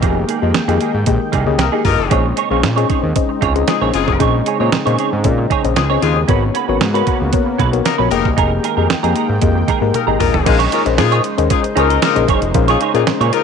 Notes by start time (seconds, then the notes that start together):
Already playing: D#3 G#3 A#3 G4 G#4 D#5 G5
0.02 F1 A#3 D#4 G#4, kick, closed hi-hat
0.28 A#3 D#4 G#4, closed hi-hat
0.42 F2 A#3 D#4 G4 G#4 D#5
0.54 F2, muted clean electric guitar stroke, snare, closed hi-hat
0.68 F2 A#3 D#4 G4 G#4 D#5, closed hi-hat
0.80 A#3 D#4 G#4, closed hi-hat
0.94 G#2, muted clean electric guitar stroke
1.06 A#1 A#3 G4 G#4 D#5, muted clean electric guitar stroke, kick, closed hi-hat
1.20 muted clean electric guitar stroke
1.32 C2 A#3 D#4 G#4, kick, closed hi-hat
1.46 C#2 A#3 G4 G#4 D#5, muted clean electric guitar stroke
1.58 C2 A#3 D#4 G4 A#4, muted clean electric guitar stroke, snare, closed hi-hat
1.72 A#3 D#4 G4 G#4 D#5
1.84 G1 A#3 D#4 F4 A#4, muted clean electric guitar stroke, kick, open hi-hat
1.99 F1, muted clean electric guitar stroke
2.10 A#1 C#3 G#3 C4 C#4 D#4 G#4 C5 C#5 D#5, kick, closed hi-hat
2.36 D#4 G#4 C#5, closed hi-hat
2.50 A#1 C#4 D#4 G#4 C5 C#5 F5
2.63 A#2, snare, closed hi-hat
2.76 C#4 D#4 G#4 C5 C#5 D#5, closed hi-hat
2.89 D#4 G#4 C#5, kick, closed hi-hat
3.03 D#2, muted clean electric guitar stroke
3.15 C#4 G#4 C5 D#5, muted clean electric guitar stroke, kick, closed hi-hat
3.29 muted clean electric guitar stroke
3.41 C#2 D#4 G#4 C#5, kick, closed hi-hat
3.55 C#4 G#4 C5 D#5, muted clean electric guitar stroke, closed hi-hat
3.68 G#3 D#4 F4 G#4, muted clean electric guitar stroke, snare, closed hi-hat
3.81 A#1 C#4 D#4 G#4 C5 C#5 D#5
3.94 F#1 G#3 D#4 F4 G#4, muted clean electric guitar stroke, closed hi-hat
4.08 F1, muted clean electric guitar stroke, kick
4.19 A#1 C#4 D#4 G#4 C5 C#5 D#5, kick, closed hi-hat
4.46 D#4 G#4 C#5, closed hi-hat
4.59 A#2 C#4 D#4 G#4 C5 C#5 D#5
4.72 A#2, muted clean electric guitar stroke, snare, closed hi-hat
4.85 A#2 C#4 D#4 G#4 C5 C#5 D#5, closed hi-hat
4.98 D#4 G#4 C#5, closed hi-hat
5.12 G#2, muted clean electric guitar stroke
5.24 A#2 C#4 G#4 C5 D#5, muted clean electric guitar stroke, kick, closed hi-hat
5.38 muted clean electric guitar stroke
5.50 D#4 G#4 C#5, kick, closed hi-hat
5.64 A#1 C#4 G#4 C5 D#5, muted clean electric guitar stroke, closed hi-hat
5.76 C#2 G#3 D#4 F4 G#4, muted clean electric guitar stroke, snare, closed hi-hat
5.90 C#4 D#4 G#4 C5 C#5 D#5
6.02 D#2 G#3 D#4 F4 G#4, closed hi-hat
6.16 muted clean electric guitar stroke
6.28 G#1 A#3 B3 C#4 F#4 A#4 B4 C#5, kick, closed hi-hat
6.54 C#4 F#4 B4, closed hi-hat
6.68 G#1 B3 C#4 F#4 A#4 B4 C#5
6.81 G#2, snare, closed hi-hat
6.94 B3 C#4 F#4 A#4 B4 C#5, closed hi-hat
7.06 C#4 F#4 B4, kick, closed hi-hat
7.20 C#2, muted clean electric guitar stroke
7.33 B3 F#4 A#4 C#5, muted clean electric guitar stroke, kick, closed hi-hat
7.46 muted clean electric guitar stroke
7.58 B1 C#4 F#4 B4, kick, closed hi-hat
7.72 B3 F#4 A#4 C#5, muted clean electric guitar stroke, closed hi-hat
7.85 A#3 D#4 F#4 A#4, muted clean electric guitar stroke, snare, closed hi-hat
7.98 A#1 B3 C#4 F#4 A#4 B4 C#5
8.11 F1 D#3 G#3 A#3 D#4 G4 G#4 A#4 D#5 G5, closed hi-hat
8.25 C2, muted clean electric guitar stroke, kick
8.37 F1 D#4 G#4 A#4, kick, closed hi-hat
8.63 D#4 G#4 A#4, closed hi-hat
8.77 F2 A#3 D#4 G4 G#4 A#4 D#5
8.89 F2, muted clean electric guitar stroke, snare, closed hi-hat
9.03 F2 A#3 D#4 G4 G#4 A#4 D#5, closed hi-hat
9.15 D#4 G#4 A#4, closed hi-hat
9.29 G#2
9.41 F2 A#3 G4 G#4 D#5, muted clean electric guitar stroke, kick, closed hi-hat
9.55 muted clean electric guitar stroke
9.68 D#4 G#4 A#4, kick, closed hi-hat
9.81 G#2 A#3 G4 G#4 A#4, muted clean electric guitar stroke
9.93 A#3 D#4 G4 A#4, muted clean electric guitar stroke, closed hi-hat, high tom
10.07 G#1 A#3 D#4 G4 G#4 A#4 D#5
10.19 A#1 A#3 D#4 F4 A#4, muted clean electric guitar stroke, mid tom, open hi-hat
10.33 F1, muted clean electric guitar stroke, floor tom
10.46 A#1 C#3 G#3 C#4 D#4 F4 G#4 A#4 C5 D#5, muted clean electric guitar stroke, kick, closed hi-hat, crash
10.59 D#4 G#4 C#5, closed hi-hat
10.71 A#3 D#4 F4 G#4 A#4 C#5, closed hi-hat
10.85 A#1 C#4 G#4 A#4 C5 D#5, muted clean electric guitar stroke, closed hi-hat
10.98 A#2 G#3 D#4 F4 G#4, muted clean electric guitar stroke, snare, closed hi-hat
11.12 D#4 G#4 C#5, closed hi-hat
11.24 muted clean electric guitar stroke, closed hi-hat
11.38 D#2 C#4 G#4 A#4 C5 D#5, muted clean electric guitar stroke, closed hi-hat
11.50 G#3 D#4 F4 G#4, muted clean electric guitar stroke, kick, closed hi-hat
11.64 muted clean electric guitar stroke, closed hi-hat
11.76 C#2 A#3 C#4 D#4 F4 G#4 A#4 C5 C#5 D#5, closed hi-hat
11.90 D#4 G#4 D#5, closed hi-hat
12.02 A#3 D#4 F4 A#4, snare, closed hi-hat
12.15 A#1 C#4 G#4 A#4 C5 D#5, muted clean electric guitar stroke, closed hi-hat
12.28 F#1 D#4 G#4 C#5, kick, closed hi-hat
12.42 F1, muted clean electric guitar stroke, closed hi-hat
12.54 A#1 C#4 G#4 A#4 C5 F5, muted clean electric guitar stroke, kick, closed hi-hat
12.68 G#3 D#4 F4 G#4 C#5, closed hi-hat
12.81 D#4 G#4 C#5, closed hi-hat
12.94 A#2 G#3 C#4 D#4 F4 G#4 A#4 C5 D#5, closed hi-hat
13.07 A#2, muted clean electric guitar stroke, snare, closed hi-hat
13.21 A#2 D#4 G#4 C#5, closed hi-hat
13.33 A#3 D#4 F4 A#4, closed hi-hat